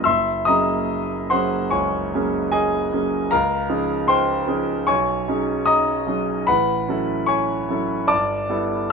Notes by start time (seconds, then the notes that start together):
0.04 F#1 E5 C6 E6
0.45 F#3 A#3 C#4 D#5 A#5 D#6
0.49 G#4
1.30 F#3 A#3 C#4 G#4 C5 F#5 C6
1.70 C#2 C#5 G#5 C#6
2.14 F#3 A#3 C#4 G#4
2.52 G#4 D#5 G#5
2.92 F#3 A#3 C#4 G#4
3.31 C#2 A#4 F5 A#5
3.69 F3 C#4 D#4 G#4
4.08 C5 G5 C6
4.47 F3 C#4 D#4 G#4
4.87 B1 C#5 G#5 C#6
5.28 F#3 C#4 D#4 G#4
5.66 D#5 A#5 D#6
6.07 F#3 C#4 D#4 G#4
6.47 A1 B4 F#5 B5
6.88 F#3 C#4 E4 A4
7.26 C#5 G#5 C#6
7.69 F#3 C#4 E4 A4
8.07 G1 D5 A5 D6
8.49 G3 B3 E4 A4